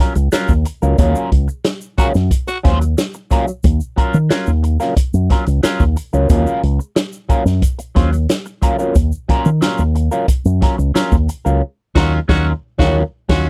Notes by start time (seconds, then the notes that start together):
0.00 F#3 C#4 F4 A#4
0.15 C#2, muted clean electric guitar stroke, closed hi-hat, shaker
0.32 F#3 C#4 F4 A#4, snare, closed hi-hat, shaker
0.48 D#2, kick, shaker
0.65 muted clean electric guitar stroke, closed hi-hat, shaker
0.82 C#2 F#3 C#4 F4 A#4, shaker
0.98 D#2 F#3 C#4 F4 A#4, kick, closed hi-hat, shaker
1.15 shaker
1.32 C#2, kick, closed hi-hat
1.48 muted clean electric guitar stroke, shaker
1.64 muted clean electric guitar stroke, snare, closed hi-hat, shaker
1.81 shaker
1.98 F#3 C#4 F4 F#4 A#4, muted fingered electric bass stroke, kick, closed hi-hat, shaker
2.14 F#2, muted clean electric guitar stroke, snare, shaker
2.31 kick, closed hi-hat, shaker
2.47 F#4, muted clean electric guitar stroke, closed hi-hat, shaker
2.63 D#2 F#3 C#4 F4 C5, kick, snare, closed hi-hat
2.81 muted clean electric guitar stroke, closed hi-hat, shaker
2.97 muted clean electric guitar stroke, snare, closed hi-hat, shaker
3.14 muted clean electric guitar stroke, shaker
3.31 F#3 C#4 F4 A#4, kick, closed hi-hat, shaker
3.48 muted clean electric guitar stroke, shaker
3.63 D#2, kick, closed hi-hat, shaker
3.80 shaker
3.96 F#3 C#4 F4 A#4, muted fingered electric bass stroke, kick, closed hi-hat
4.14 D#3, shaker
4.29 F#3 C#4 F4 A#4, muted fingered electric bass stroke, snare, closed hi-hat, shaker
4.47 D#2, shaker
4.63 muted clean electric guitar stroke, closed hi-hat, shaker
4.80 F#3 C#4 F4 A#4, snare, shaker
4.97 muted fingered electric bass stroke, muted clean electric guitar stroke, kick, closed hi-hat, shaker
5.14 F#2, shaker
5.30 F#3 C#4 F4 A#4, kick, snare, closed hi-hat
5.46 C#2, closed hi-hat, shaker
5.63 F#3 C#4 F4 A#4, snare, closed hi-hat, shaker
5.80 D#2, kick, shaker
5.96 muted clean electric guitar stroke, closed hi-hat, shaker
6.13 C#2 F#3 C#4 F4 A#4, shaker
6.30 D#2 F#3 C#4 F4 A#4, kick, closed hi-hat, shaker
6.47 shaker
6.63 C#2, closed hi-hat
6.79 muted clean electric guitar stroke, shaker
6.96 muted clean electric guitar stroke, snare, closed hi-hat, shaker
7.12 shaker
7.29 F#3 C#4 F4 A#4, muted fingered electric bass stroke, kick, closed hi-hat, shaker
7.45 F#2, muted clean electric guitar stroke, snare, shaker
7.62 kick, closed hi-hat, shaker
7.79 muted clean electric guitar stroke, closed hi-hat, shaker
7.95 D#2 F#3 C#4 F4 C5, kick, snare, closed hi-hat
8.12 muted clean electric guitar stroke, closed hi-hat, shaker
8.29 muted clean electric guitar stroke, snare, closed hi-hat, shaker
8.46 muted clean electric guitar stroke, shaker
8.62 F#3 C#4 F4 A#4, kick, closed hi-hat, shaker
8.79 F#3 C#4 F4 A#4, shaker
8.95 D#2, kick, closed hi-hat, shaker
9.12 shaker
9.29 F#3 C#4 F4 A#4, muted fingered electric bass stroke, kick, closed hi-hat
9.45 D#3, shaker
9.61 F#3 C#4 F4 A#4, muted fingered electric bass stroke, snare, closed hi-hat, shaker
9.78 D#2, shaker
9.95 muted clean electric guitar stroke, closed hi-hat, shaker
10.11 F#3 C#4 F4 A#4, shaker
10.28 muted clean electric guitar stroke, muted fingered electric bass stroke, kick, closed hi-hat, shaker
10.45 F#2, shaker
10.61 F#3 C#4 F4 A#4, kick, snare, closed hi-hat
10.78 C#2, muted clean electric guitar stroke, shaker
10.94 F#3 C#4 F4 A#4, snare, closed hi-hat, shaker
11.12 D#2, kick, shaker
11.29 muted clean electric guitar stroke, closed hi-hat, shaker
11.45 C#2 F#3 C#4 F4 A#4, shaker
11.95 D#2 F#3 C#4 F4 F#4 A#4, kick, snare, crash
12.28 D#2 F#3 C#4 F4 F#4 A#4, kick, snare
12.78 D#2 F#3 C#4 F4 F#4 A#4, kick, snare
13.29 D#2 F#3 C#4 F4 F#4, kick, snare, crash